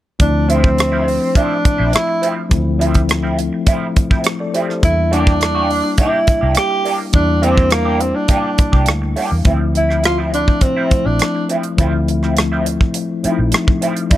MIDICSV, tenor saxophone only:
0, 0, Header, 1, 2, 480
1, 0, Start_track
1, 0, Key_signature, -1, "minor"
1, 0, Tempo, 579710
1, 166, Time_signature, 4, 2, 24, 8
1, 11736, End_track
2, 0, Start_track
2, 0, Title_t, "Tenor saxophone"
2, 0, Program_c, 0, 66
2, 175, Note_on_c, 0, 62, 80
2, 413, Note_on_c, 0, 60, 77
2, 426, Note_off_c, 0, 62, 0
2, 1129, Note_on_c, 0, 62, 90
2, 1141, Note_off_c, 0, 60, 0
2, 1604, Note_off_c, 0, 62, 0
2, 1610, Note_on_c, 0, 64, 92
2, 1940, Note_off_c, 0, 64, 0
2, 4010, Note_on_c, 0, 64, 91
2, 4226, Note_off_c, 0, 64, 0
2, 4252, Note_on_c, 0, 62, 88
2, 4929, Note_off_c, 0, 62, 0
2, 4976, Note_on_c, 0, 64, 98
2, 5411, Note_off_c, 0, 64, 0
2, 5442, Note_on_c, 0, 67, 96
2, 5772, Note_off_c, 0, 67, 0
2, 5920, Note_on_c, 0, 62, 84
2, 6158, Note_on_c, 0, 60, 83
2, 6170, Note_off_c, 0, 62, 0
2, 6392, Note_on_c, 0, 58, 77
2, 6404, Note_off_c, 0, 60, 0
2, 6634, Note_on_c, 0, 60, 70
2, 6646, Note_off_c, 0, 58, 0
2, 6754, Note_on_c, 0, 62, 73
2, 6767, Note_off_c, 0, 60, 0
2, 7474, Note_off_c, 0, 62, 0
2, 8091, Note_on_c, 0, 64, 79
2, 8306, Note_off_c, 0, 64, 0
2, 8325, Note_on_c, 0, 65, 85
2, 8431, Note_off_c, 0, 65, 0
2, 8565, Note_on_c, 0, 62, 76
2, 8798, Note_on_c, 0, 60, 82
2, 8810, Note_off_c, 0, 62, 0
2, 9159, Note_on_c, 0, 62, 73
2, 9172, Note_off_c, 0, 60, 0
2, 9518, Note_off_c, 0, 62, 0
2, 11736, End_track
0, 0, End_of_file